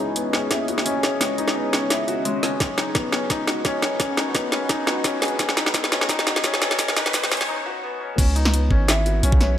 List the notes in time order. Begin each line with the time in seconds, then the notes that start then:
Already playing: C#2 B3 C#4 E4 F#4 G#4 C#5 D#5
0.00 D#4
0.16 B3, closed hi-hat
0.33 C#4, snare
0.51 D#2 E4, snare, closed hi-hat
0.68 F#4, closed hi-hat
0.78 snare
0.85 C#4, closed hi-hat
1.03 C#5, snare, closed hi-hat
1.21 C#2 C#4, snare, closed hi-hat
1.38 D#4, closed hi-hat
1.48 snare
1.55 B3
1.73 C#4, snare, closed hi-hat
1.90 E4, snare, closed hi-hat
2.08 F#4, closed hi-hat
2.25 G#1 G#3, closed hi-hat
2.43 C#4, snare, closed hi-hat
2.60 B1 C#4, kick, snare, closed hi-hat, riser
2.76 D#4 F#4, snare, closed hi-hat
2.95 B3, kick, snare, closed hi-hat
3.00 B4
3.12 C#4, snare
3.30 C#2 D#4, kick, snare, closed hi-hat
3.47 F#4, snare, closed hi-hat
3.65 C#4, kick, snare, closed hi-hat
3.82 F#2 C#5, snare, closed hi-hat
4.00 C#4, kick, snare, closed hi-hat
4.17 D#4, snare, closed hi-hat
4.35 B3, kick, snare, closed hi-hat
4.52 C#4, snare
4.69 D#4, kick, snare, closed hi-hat
4.87 C#2 F#4, snare, closed hi-hat
5.04 C#4, kick, snare, closed hi-hat
5.22 G#4, snare, closed hi-hat
5.25 closed hi-hat
5.28 closed hi-hat
5.39 B1 C#4, kick, snare, closed hi-hat
5.49 snare
5.57 D#4, snare, closed hi-hat
5.66 snare
5.74 B3, kick, snare, closed hi-hat
5.84 snare
5.92 C#4, snare
6.01 snare
6.09 C#2 D#4, kick, snare, closed hi-hat
6.19 snare
6.26 F#4, snare, closed hi-hat
6.36 snare
6.44 C#4, kick, snare, closed hi-hat
6.54 snare
6.61 C#2 C#5, snare, closed hi-hat
6.71 snare
6.79 C#4, kick, snare, closed hi-hat
6.88 snare
6.96 D#4, snare, closed hi-hat
7.06 snare
7.13 B3, kick, snare, closed hi-hat
7.24 snare
7.31 C#4, snare, closed hi-hat
7.34 closed hi-hat
7.37 snare, closed hi-hat
7.48 D#4
7.66 F#4
7.83 B3
8.01 C#4
8.18 C#2 C#4, kick, closed hi-hat, crash
8.35 D#4, closed hi-hat
8.43 E3, snare
8.53 B3, closed hi-hat
8.64 G#4
8.71 G#1 C#4, kick
8.88 E4, snare, closed hi-hat
9.06 F#4, closed hi-hat
9.23 B1 C#4, closed hi-hat
9.32 kick
9.41 C#5, snare, closed hi-hat